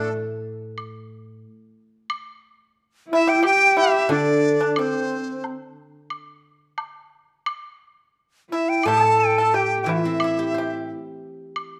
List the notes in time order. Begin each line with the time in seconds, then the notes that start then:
Already playing: A2 E3 A3 A4
0.78 high woodblock
2.10 high woodblock
3.08 E4
3.13 E4 E5
3.27 G4 G5
3.43 G4 G5, high woodblock
3.77 E4 E5
4.09 D3 D4 D5
4.61 D4
4.76 C4 C5, high woodblock
5.44 low woodblock
6.10 high woodblock
6.78 high woodblock, low woodblock
7.46 high woodblock
8.51 E4 E5
8.69 G5
8.83 A2 A4 A5, high woodblock
8.88 A4
9.20 G5
9.38 A4 A5
9.54 G4 G5
9.82 E3 G4 G5
9.87 E4
9.92 E5
10.05 C4
10.20 E4, high woodblock
10.39 G4
10.54 C5
10.58 G4
11.56 high woodblock